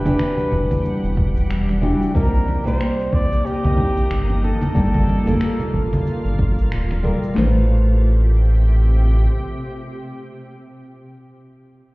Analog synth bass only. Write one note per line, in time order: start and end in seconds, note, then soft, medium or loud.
0.06 0.16 E1 medium
0.52 0.66 E1 loud
1.04 1.44 E1 loud
1.50 1.93 E1 medium
2.15 2.58 C2 loud
2.67 2.77 C2 medium
3.13 3.26 C2 medium
3.65 4.05 C2 loud
4.11 4.54 G1 medium
4.76 5.19 G1 medium
5.27 5.37 G1 medium
5.74 5.87 G1 medium
6.25 6.73 G1 loud
6.72 7.15 D1 loud
7.37 9.29 A1 loud